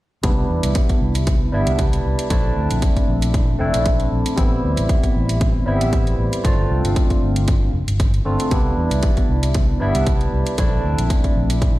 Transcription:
0.23 0.44 C2 medium
0.23 1.50 G3 medium
0.23 1.50 B3 medium
0.23 1.51 D4 medium
0.23 1.51 E4 medium
0.23 kick loud
0.23 closed hi-hat medium
0.49 0.60 E2 medium
0.63 0.72 C2 medium
0.63 closed hi-hat soft
0.75 kick loud
0.75 closed hi-hat medium
0.89 kick medium
0.89 closed hi-hat soft
1.01 1.48 C2 medium
1.15 closed hi-hat soft
1.27 kick loud
1.27 closed hi-hat medium
1.52 1.63 G1 medium
1.52 2.27 G3 medium
1.52 2.28 B3 medium
1.52 2.28 D4 medium
1.52 2.28 E4 medium
1.67 2.00 C2 medium
1.67 closed hi-hat soft
1.79 kick loud
1.79 closed hi-hat medium
1.93 closed hi-hat soft
2.05 2.15 C2 medium
2.19 closed hi-hat soft
2.30 2.50 A#1 medium
2.30 3.57 A3 medium
2.30 3.57 C4 medium
2.30 3.57 D4 medium
2.30 3.58 E4 medium
2.30 kick loud
2.30 closed hi-hat medium
2.56 2.67 D2 medium
2.71 2.79 A#1 medium
2.71 closed hi-hat soft
2.82 kick loud
2.82 closed hi-hat medium
2.96 kick medium
2.96 closed hi-hat soft
3.08 3.55 A#1 medium
3.22 closed hi-hat soft
3.34 kick loud
3.34 closed hi-hat medium
3.59 3.70 F1 medium
3.59 4.34 A3 medium
3.59 4.34 C4 medium
3.59 4.35 D4 medium
3.59 4.35 E4 medium
3.74 4.07 A#1 medium
3.74 closed hi-hat soft
3.86 kick loud
3.86 closed hi-hat medium
4.00 closed hi-hat soft
4.12 4.22 A#1 medium
4.26 closed hi-hat soft
4.36 4.57 A1 medium
4.36 5.63 G3 medium
4.36 5.64 B3 medium
4.36 5.64 C4 medium
4.36 5.64 E4 medium
4.36 kick loud
4.36 closed hi-hat medium
4.64 4.74 D2 medium
4.77 4.86 A1 medium
4.77 closed hi-hat soft
4.89 kick loud
4.89 closed hi-hat medium
5.03 kick medium
5.03 closed hi-hat soft
5.15 5.62 A1 medium
5.29 closed hi-hat soft
5.41 kick loud
5.41 closed hi-hat medium
5.66 5.77 G1 medium
5.66 6.41 G3 medium
5.66 6.42 B3 medium
5.66 6.42 C4 medium
5.66 6.42 E4 medium
5.81 6.14 A1 medium
5.81 closed hi-hat soft
5.93 kick loud
5.93 closed hi-hat medium
6.07 closed hi-hat soft
6.18 6.29 A1 medium
6.33 closed hi-hat soft
6.43 6.64 G1 medium
6.43 7.70 A3 medium
6.43 7.71 C4 medium
6.43 7.71 D4 medium
6.43 7.71 F4 medium
6.43 kick loud
6.43 closed hi-hat medium
6.70 6.81 C2 medium
6.84 6.93 G1 medium
6.84 closed hi-hat soft
6.96 kick loud
6.96 closed hi-hat medium
7.10 kick medium
7.10 closed hi-hat soft
7.22 7.69 G1 medium
7.36 closed hi-hat soft
7.48 kick loud
7.48 closed hi-hat medium
7.74 7.84 F1 medium
7.88 8.21 G1 medium
7.88 closed hi-hat soft
8.00 kick loud
8.00 closed hi-hat medium
8.14 closed hi-hat soft
8.25 8.36 G1 medium
8.25 8.48 A3 medium
8.25 8.49 C4 medium
8.25 8.49 D4 medium
8.25 8.49 F4 medium
8.40 closed hi-hat soft
8.50 8.71 C2 medium
8.50 9.77 G3 medium
8.50 9.78 B3 medium
8.50 9.78 D4 medium
8.50 9.78 E4 medium
8.50 kick loud
8.50 closed hi-hat medium
8.77 8.88 E2 medium
8.91 9.00 C2 medium
8.91 closed hi-hat soft
9.03 kick loud
9.03 closed hi-hat medium
9.17 kick medium
9.17 closed hi-hat soft
9.29 9.76 C2 medium
9.43 closed hi-hat soft
9.54 kick loud
9.54 closed hi-hat medium
9.80 9.91 G1 medium
9.80 10.55 G3 medium
9.80 10.55 B3 medium
9.80 10.56 D4 medium
9.80 10.56 E4 medium
9.95 10.28 C2 medium
9.95 closed hi-hat soft
10.07 kick loud
10.07 closed hi-hat medium
10.21 closed hi-hat soft
10.33 10.43 C2 medium
10.46 closed hi-hat soft
10.58 10.78 A#1 medium
10.58 11.79 A3 medium
10.58 11.79 C4 medium
10.58 11.79 D4 medium
10.58 11.79 E4 loud
10.58 kick loud
10.58 closed hi-hat medium
10.84 10.95 D2 medium
10.98 11.07 A#1 medium
10.98 closed hi-hat soft
11.10 kick loud
11.10 closed hi-hat medium
11.24 kick medium
11.24 closed hi-hat soft
11.36 11.79 A#1 medium
11.50 closed hi-hat soft
11.62 kick loud
11.62 closed hi-hat medium

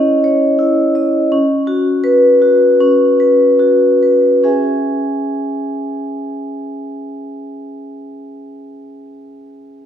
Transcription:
0.00 1.32 C#4 medium
0.00 0.59 E4 soft
0.00 0.24 C#5 soft
0.00 0.11 D#5 medium
0.24 0.81 C#5 soft
0.59 1.17 E4 soft
0.95 1.32 D#5 soft
1.32 2.77 C#4 medium
1.67 2.27 F#4 soft
2.04 2.65 B4 medium
2.42 3.05 F#4 soft
2.80 4.40 C#4 soft
3.20 3.86 B4 soft
3.59 4.27 F#4 soft
4.03 4.44 B4 soft
4.44 8.56 C#4 soft
4.44 8.56 G#4 soft
4.44 8.57 E5 soft
4.44 8.57 G#5 soft

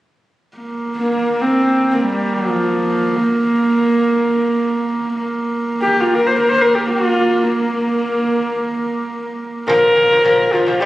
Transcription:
0.57 5.14 A#3 medium
0.96 1.42 A#3 medium
1.41 1.91 C4 medium
1.91 2.05 A#3 medium
1.91 1.93 C4 medium
2.05 2.35 G3 medium
2.34 3.18 F3 medium
3.16 5.24 A#3 medium
5.14 9.73 A#3 medium
5.82 6.02 G4 medium
6.00 6.16 F4 medium
6.15 6.28 A#4 medium
6.26 6.37 C5 medium
6.39 6.50 A#4 medium
6.49 6.63 C5 medium
6.61 6.76 A#4 medium
6.75 6.87 G4 medium
6.90 7.45 F4 medium
7.43 9.09 A#3 medium
9.68 9.90 A#2 medium
9.68 9.91 F3 medium
9.68 10.54 A#4 loud
9.96 10.07 A#2 medium
9.96 10.08 F3 medium
10.11 10.22 A#2 medium
10.11 10.23 F3 medium
10.24 10.47 A#2 medium
10.24 10.47 F3 medium
10.53 10.64 A#2 medium
10.53 10.65 F3 medium
10.53 10.81 F4 medium
10.67 10.78 A#2 medium
10.67 10.79 F3 medium
10.80 10.86 C3 medium
10.80 10.86 G3 medium
10.80 10.86 G4 medium

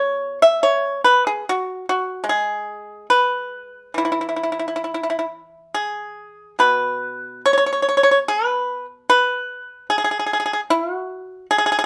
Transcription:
0.00 1.43 B2 soft
0.00 0.38 C#5 medium
0.42 0.60 E5 medium
0.63 1.00 C#5 medium
1.04 1.22 B4 medium
1.27 1.44 G#4 medium
1.49 1.85 F#4 medium
1.89 2.24 F#4 medium
2.24 4.84 G#3 soft
2.29 3.06 G#4 medium
3.10 3.91 B4 medium
3.94 6.59 E3 soft
3.94 4.03 E4 medium
4.05 4.11 E4 soft
4.12 4.18 E4 soft
4.21 4.27 E4 soft
4.29 4.35 E4 soft
4.36 4.42 E4 soft
4.43 4.50 E4 soft
4.52 4.58 E4 soft
4.59 4.66 E4 soft
4.68 4.74 E4 soft
4.76 4.82 E4 soft
4.84 4.91 E4 soft
4.94 5.00 E4 soft
5.03 5.09 E4 soft
5.10 5.16 E4 soft
5.19 5.24 E4 soft
5.74 6.55 G#4 medium
6.59 9.09 B2 soft
6.59 7.40 B4 medium
7.46 7.52 C#5 medium
7.53 7.56 C#5 medium
7.58 7.65 C#5 medium
7.66 7.71 C#5 soft
7.73 7.80 C#5 soft
7.82 7.87 C#5 soft
7.89 7.96 C#5 soft
7.97 8.02 C#5 soft
8.03 8.10 C#5 medium
8.11 8.18 C#5 soft
8.28 8.85 B4 medium
9.10 9.86 B4 medium
9.90 9.96 G#4 medium
9.98 10.03 G#4 soft
10.04 10.10 G#4 soft
10.11 10.17 G#4 soft
10.19 10.25 G#4 soft
10.26 10.32 G#4 soft
10.33 10.39 G#4 soft
10.40 10.44 G#4 soft
10.46 10.52 G#4 soft
10.53 10.60 G#4 soft
10.70 10.93 E4 medium
10.93 11.46 F#4 medium
11.51 11.57 G#4 medium
11.58 11.64 G#4 medium
11.66 11.71 G#4 medium
11.72 11.77 G#4 medium
11.79 11.83 G#4 medium

